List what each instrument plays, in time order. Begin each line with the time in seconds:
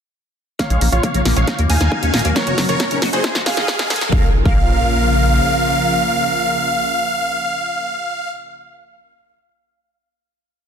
0.59 supersaw synth A#2 C#3 F3 C#4 F4 C#5 F5, acid bass A#3, grand piano F5, kick, snare, closed hi-hat, riser
0.70 analog synth bass A#1, acid bass G#3, closed hi-hat
0.81 analog synth bass A#1, acid bass A#3, open hi-hat
0.92 analog synth bass A#1, acid bass F4, supersaw synth C#5 F5, grand piano F5, closed hi-hat
1.03 acid bass A#3, kick, closed hi-hat
1.14 analog synth bass A#1, acid bass A#3, closed hi-hat
1.25 analog synth bass A#1, acid bass A#3, snare, open hi-hat
1.36 analog synth bass A#1, acid bass G#3, supersaw synth C#5 F5, grand piano F5, closed hi-hat
1.47 supersaw synth A#2 D#3 F#3 D#4 F#4, acid bass D#4, kick, snare, closed hi-hat
1.58 analog synth bass D#2, acid bass A#3, closed hi-hat
1.70 analog synth bass D#2, acid bass D#4, supersaw synth F5 G#5, grand piano G#5, open hi-hat
1.81 analog synth bass D#2, acid bass D#4, snare, closed hi-hat
1.92 acid bass D#4, kick
2.03 analog synth bass D#2, acid bass C#4, closed hi-hat
2.14 analog synth bass D#1, acid bass D#4, snare, open hi-hat
2.19 closed hi-hat
2.25 analog synth bass D#2, acid bass A#3, closed hi-hat
2.36 supersaw synth C#3 C#4 A#4 C#5, acid bass F#3, grand piano C#5, kick, snare, closed hi-hat
2.47 analog synth bass F#1, acid bass F#4, closed hi-hat
2.58 analog synth bass F#1, acid bass F#3, snare, open hi-hat
2.69 analog synth bass F#1, acid bass F3, supersaw synth A#4 C#5, grand piano C#5, closed hi-hat
2.80 acid bass F#3, kick, snare, closed hi-hat
2.91 analog synth bass F#1, acid bass C#4, closed hi-hat
3.02 analog synth bass F#1, acid bass F#3, snare, open hi-hat
3.13 analog synth bass F#1, acid bass F#4, supersaw synth G#4 C5, grand piano C5, closed hi-hat
3.24 supersaw synth C3 D#3 G#3 D#4 G#4, acid bass G#3, kick, snare, closed hi-hat
3.35 analog synth bass G#1, acid bass F#3, snare, closed hi-hat
3.46 analog synth bass G#1, acid bass G#3, supersaw synth G#4 F5, grand piano F5, snare, open hi-hat
3.57 analog synth bass G#1, acid bass D#4, snare, closed hi-hat
3.68 acid bass G#3, kick, snare, closed hi-hat
3.79 analog synth bass G#1, acid bass G#3, snare, closed hi-hat
3.90 analog synth bass G#2, acid bass G#3, snare, open hi-hat
3.96 closed hi-hat
4.01 analog synth bass G#1, acid bass F#3, snare, closed hi-hat
4.12 analog synth bass A#1, supersaw synth C#3 F3 A#3 F4 A#4 F5, acid bass A#3, grand piano F5, kick, impact
4.45 analog synth bass A#1, acid bass A#3, grand piano F5, supersaw synth F5, kick